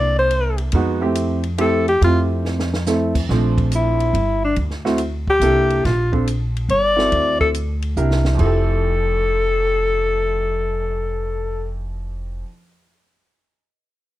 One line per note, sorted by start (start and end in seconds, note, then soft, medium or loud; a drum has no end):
0.00 0.69 C2 medium
0.00 0.65 A#3 medium
0.00 0.65 D4 medium
0.00 0.65 E4 medium
0.00 0.65 A4 medium
0.00 0.18 D5 medium
0.19 0.57 C5 medium
0.31 ride soft
0.58 ride soft
0.72 1.97 F2 medium
0.72 0.99 G#3 medium
0.72 0.99 B3 medium
0.72 0.99 D#4 medium
0.72 1.00 F#4 medium
0.72 kick soft
0.72 ride medium
1.01 1.38 A3 medium
1.01 1.38 C4 medium
1.01 1.38 E4 medium
1.01 1.38 G4 medium
1.15 hi-hat pedal soft
1.15 ride medium
1.43 ride soft
1.58 1.83 A3 medium
1.58 1.84 C4 medium
1.58 1.84 E4 medium
1.58 1.84 G4 medium
1.58 1.86 A4 medium
1.58 ride medium
1.88 2.01 G4 medium
1.88 ride soft
2.01 3.25 F2 medium
2.01 2.66 A3 medium
2.01 2.67 C4 soft
2.01 2.67 E4 soft
2.01 2.20 F4 medium
2.01 2.67 G4 medium
2.01 kick soft
2.01 ride medium
2.45 snare soft
2.60 snare medium
2.74 snare medium
2.86 3.12 A3 medium
2.86 3.12 C4 medium
2.86 3.12 E4 medium
2.86 3.12 A4 medium
2.86 snare medium
2.86 hi-hat pedal medium
3.15 kick medium
3.15 crash medium
3.29 4.10 A#1 medium
3.29 4.15 F3 medium
3.29 4.14 A3 medium
3.29 4.14 C4 medium
3.29 4.15 D4 medium
3.29 kick soft
3.29 snare soft
3.58 kick medium
3.58 ride soft
3.72 4.40 E4 medium
3.72 hi-hat pedal medium
3.72 ride medium
4.00 ride soft
4.13 4.53 G1 medium
4.13 ride medium
4.44 4.57 D4 medium
4.56 5.38 D2 medium
4.56 kick soft
4.56 ride soft
4.70 snare soft
4.85 4.98 A3 medium
4.85 4.98 C4 medium
4.85 4.98 E4 medium
4.85 4.98 F#4 medium
4.85 snare soft
4.98 hi-hat pedal soft
4.98 ride medium
5.27 5.86 G4 medium
5.27 kick soft
5.40 5.80 C2 medium
5.40 5.84 A#3 medium
5.40 5.84 D4 medium
5.40 5.84 E4 medium
5.40 5.85 A4 medium
5.40 hi-hat pedal soft
5.40 ride medium
5.70 ride soft
5.85 6.66 A#1 medium
5.85 6.13 F4 medium
5.85 kick soft
5.85 snare soft
5.85 ride medium
6.12 6.25 C4 medium
6.12 6.25 D4 soft
6.12 6.25 F4 soft
6.12 6.26 A4 medium
6.12 kick soft
6.27 hi-hat pedal soft
6.27 ride medium
6.57 ride soft
6.69 7.09 G1 medium
6.69 7.37 D5 loud
6.69 ride soft
6.96 7.51 C4 medium
6.96 7.51 E4 medium
6.96 7.51 F#4 soft
6.96 7.52 A4 medium
6.96 snare soft
7.12 7.93 D2 medium
7.12 kick soft
7.12 ride medium
7.41 7.49 A4 medium
7.41 kick soft
7.54 hi-hat pedal soft
7.54 ride medium
7.82 ride soft
7.97 8.37 C2 medium
7.97 8.40 D4 medium
7.97 8.39 E4 medium
7.97 8.40 G4 medium
7.97 8.40 A#4 medium
7.97 hi-hat pedal soft
8.11 snare soft
8.25 snare medium
8.35 12.43 F2 medium
8.35 12.44 F3 medium
8.39 12.41 F1 medium
8.39 12.46 E4 medium
8.39 11.72 A4 medium
8.39 kick soft
8.39 crash soft
8.44 12.48 G4 medium
8.44 12.49 A4 medium
8.68 cymbal swell soft